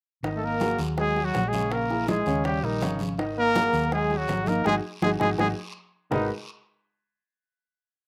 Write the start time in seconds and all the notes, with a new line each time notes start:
0.23 G#1 D#3 D#4 D#5, high bongo, high conga, long guiro
0.35 A3 A4
0.42 A#3 A#4, high conga
0.60 F#3 F#4 G#4, high bongo, high conga, short guiro
0.79 D#2, high bongo, high conga, short guiro
0.97 F#3 G#3 F#4 G#4, high bongo, high conga, long guiro
1.16 F#3 F#4 G#4, high bongo, high conga
1.22 F#3 F#4
1.34 A#1, high bongo, low bongo, high conga, short guiro
1.47 G#3 G#4
1.53 C#3 C#4 C#5, high bongo, high conga, short guiro
1.70 A#3 A#4, high bongo, high conga, long guiro
1.90 E3 E4 G#4, high bongo, high conga
2.07 G#3 G#4, high bongo, high conga, short guiro
2.26 D#2 C#3 C#4 C#5, high bongo, short guiro
2.44 G3 G4, high bongo, high conga, long guiro
2.63 A#1 D#3 G3 D#4 G4 A#4, high bongo, high conga
2.81 G#1 C#3 C#4 C#5, high bongo, low bongo, high conga, short guiro
2.99 high conga, short guiro
3.18 D#3 D#4 D#5, high bongo, high conga, long guiro
3.38 A#3 A#4, high conga
3.55 F#3 F#4 G#4, high bongo, high conga, short guiro
3.73 D#2, high bongo, high conga, short guiro
3.91 F#3 G#3 F#4 G#4, high bongo, high conga, long guiro
4.10 F#3 F#4 G#4, high bongo, high conga
4.17 F#3 F#4
4.28 G#1, high bongo, low bongo, high conga, short guiro
4.46 D#3 A#3 D#4 A#4 D#5, high bongo, high conga, short guiro
4.64 G#1 G#3 D#4 F#4 G#4, high bongo, high conga, long guiro
5.01 G#1 G#3 D#4 F#4 G#4, high bongo, high conga, long guiro
5.20 G#1 G#3 D#4 F#4 G#4, high bongo, high conga, long guiro
5.38 G#1 G#3 D#4 F#4 G#4, high bongo, high conga, long guiro
6.11 G#1 D#3 G#3 D#4 F#4 G#4 A#4 B4, low bongo, low conga, long guiro